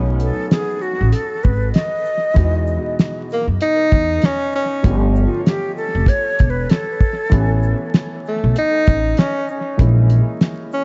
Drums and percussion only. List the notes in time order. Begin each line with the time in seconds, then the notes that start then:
0.20 closed hi-hat, shaker
0.51 snare, closed hi-hat
0.82 shaker
1.12 closed hi-hat
1.43 kick, shaker
1.74 snare, closed hi-hat
2.05 shaker
2.36 kick, closed hi-hat
2.67 shaker
2.99 snare, closed hi-hat
3.30 shaker
3.61 closed hi-hat
3.91 kick, closed hi-hat, shaker
4.22 snare, closed hi-hat
4.52 shaker
4.84 kick, closed hi-hat
5.15 shaker
5.46 snare, closed hi-hat
5.78 shaker
6.06 kick, closed hi-hat
6.39 kick, closed hi-hat, shaker
6.69 snare, closed hi-hat
7.00 kick, shaker
7.32 kick, closed hi-hat
7.63 shaker
7.94 snare, closed hi-hat
8.26 shaker
8.56 closed hi-hat
8.87 kick, closed hi-hat, shaker
9.17 snare, closed hi-hat
9.48 shaker
9.79 kick, closed hi-hat
10.10 closed hi-hat, shaker
10.41 snare, closed hi-hat
10.72 shaker